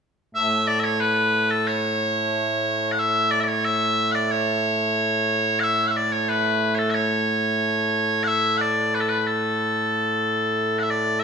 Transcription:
bagpipes
0.35 A2 A3 E5
0.67 D5
0.80 E5
0.84 C#5
1.00 B4
1.50 A4
1.67 C#5
2.92 F#5
2.99 E5
3.31 D5
3.40 D5 E5
3.48 C#5
3.65 E5
4.11 D5 F#5
4.31 C#5
5.60 E5 F#5
5.87 E5 F#5
5.97 D5
6.12 C#5
6.29 B4
6.75 A4 C#5
6.90 E5
6.94 C#5
8.23 E5 F#5
8.57 F#5
8.61 D5
8.95 B4
9.00 A4
9.09 B4
9.19 B4
9.27 A4
10.79 E5 F#5
10.90 D5
11.20 E5

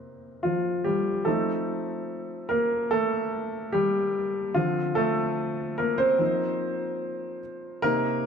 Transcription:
grand piano
Already playing: C3 A#3 D#4
0.43 F3 F4
0.84 G3 G4
1.25 F3 A3 C4 D#4 A4
2.49 A#3 A#4
2.91 A3 A4
3.72 G3 G4
4.54 D3 F3 C4 F4
4.95 A3 A4
5.78 A#3 A#4
5.98 C4 C5
6.19 F3 A#3 D#4
7.82 C3 A#3 D#4 A#4

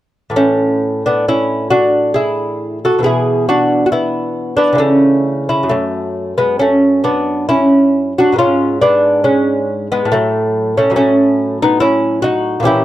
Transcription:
lute
0.30 A2 E3
0.36 A3 C#4
1.06 B3 D4
1.28 C#4 E4
1.70 D4 F#4
2.14 E4 G#4
2.85 F#4 A4
2.99 B2 E3
3.03 B3 E4 G#4
3.49 D4 F#4
3.86 F#4
3.92 B3 E4
4.57 B3 D4
4.73 C#3 E3
4.78 A3 C#4
5.49 C#4 E4
5.63 F#2
5.69 F#3 A3
6.38 G#3 B3
6.59 A3 C#4
7.04 B3 D4
7.49 C#4 E4
8.18 D4 F#4
8.32 G#2 G#3 B3
8.38 C#4 F4
8.81 B3 D4
9.24 G#3 C#4
9.92 G#3 B3
10.05 A2
10.12 F#3 A3
10.77 A3 C#4
10.90 A2 F#3
10.96 A3 C#4
11.62 B3 D#4
11.80 C#4 E4
12.22 D#4 F#4
12.60 A#2 E3 C#4
12.65 E4 G4

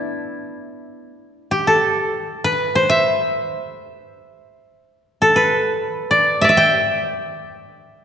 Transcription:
koto
Already playing: A3 B3 D4 E4
1.51 G4
1.67 A4
2.44 B4
2.75 C5
2.90 E5
5.22 A4
5.36 B4
6.11 D5
6.41 D5 E5
6.49 E5
6.57 G5

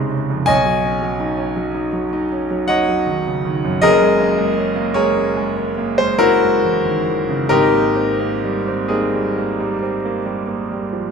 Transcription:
grand piano
Already playing: A#1 C3 C#3 G#3 C4 D#4 D#5 F5 A#5 C6
0.11 C#3
0.30 F2
0.46 B1 C#5 D#5 G#5
0.66 F#3
0.84 C#4
1.01 F#3
1.20 D#4
1.38 C#4
1.56 F#3
1.75 D#4
1.93 F#3
2.13 D#4
2.32 C#4
2.50 F#3
2.68 D#4 C#5 D#5 F#5
2.88 F#3
3.07 D#3
3.27 C#3
3.45 D#3
3.65 F#2
3.82 F#1 F#2 G#4 A#4 D#5
4.01 G#3
4.20 A#3
4.38 G#3
4.57 C#4
4.76 A#3
4.94 G#3 G#4 A#4 C#5
5.16 C#4
5.37 G#3
5.56 C#4
5.77 A#3
5.98 G#3 C5
6.19 C#4 E4 F#4 A#4
6.43 G#3
6.65 E3
6.85 D#3
7.07 E3
7.29 C#3
7.49 G#1 G#2 D#4 G4 A#4
7.74 A#3
7.96 C4
8.20 A#3
8.44 G3
8.68 C4
8.89 A#3 C4 D#4 G#4
9.14 G3
9.38 A#3
9.60 G3
9.82 C4
10.05 A#3
10.26 G3
10.47 A#3
10.71 G3
10.93 F3

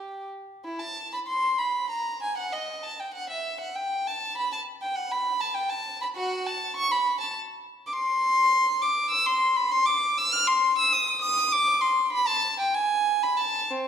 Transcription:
violin
Already playing: G4
0.64 E4
0.80 A5
1.14 B5
1.27 C6
1.58 B5
1.90 A#5
2.23 G#5
2.38 F#5
2.53 D#5
2.83 A5
3.00 G5
3.14 F#5
3.30 E5
3.60 F#5
3.75 G5
4.07 A5
4.37 B5
4.52 A5
4.82 G5
4.95 F#5
5.11 B5
5.41 A5
5.54 G5
5.70 A5
6.01 B5
6.15 F#4 F#5
6.46 A5
6.76 C#6
6.92 B5
7.20 A5
7.86 D6
7.93 C6
8.82 D6
9.10 E6
9.26 C6
9.56 B5
9.71 C6
9.86 D6
10.18 E6
10.32 F6
10.47 C6
10.78 E6
10.93 D#6
11.22 D#6
11.52 D6
11.81 C6
12.13 B5
12.27 A5
12.60 G5
12.75 G#5
13.23 B5
13.38 A5
13.70 C4

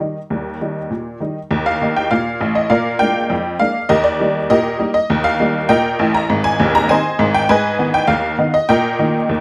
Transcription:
honky-tonk piano
Already playing: D#5
0.00 D#3 G3 D#4
0.30 D#2 G3
0.61 D#3 G3 D#4
0.90 A#2
1.20 D#3 G3 D#4
1.51 D#2
1.66 F5
1.82 D#3 A#3 D#4
1.96 G5
2.11 A#2 F5
2.40 A1 A2
2.55 D#5
2.70 A#2 A#4 D5 F5
2.99 G#3 A#3 D4 G5
3.30 F2
3.60 G#3 A#3 D4 F5
3.89 D#2 G4 A#4 D#5
4.04 D5
4.20 G3 A#3 D#4
4.50 A#2 G4 A#4 D#5
4.80 G3 A#3 D#4
4.94 D#5
5.10 D#2
5.24 F5
5.40 G3 A#3 D#4
5.69 A#2 A#4 D#5 G5
5.99 A1 A2
6.15 A#5
6.29 G#1 G#2
6.44 G#5
6.60 D#1 D#2
6.75 A#5
6.89 D#3 C4 D#4 C5 D#5 G#5
7.19 G#1 G#2
7.34 G5
7.49 G#2 B4 D#5 G#5
7.79 D#3 B3 D#4
7.94 G5
8.07 D#2 F5
8.38 D#3 B3 D#4
8.54 D#5
8.69 A#2 A#4 D#5 G5
8.99 D#3 A#3 D#4
9.29 D#2

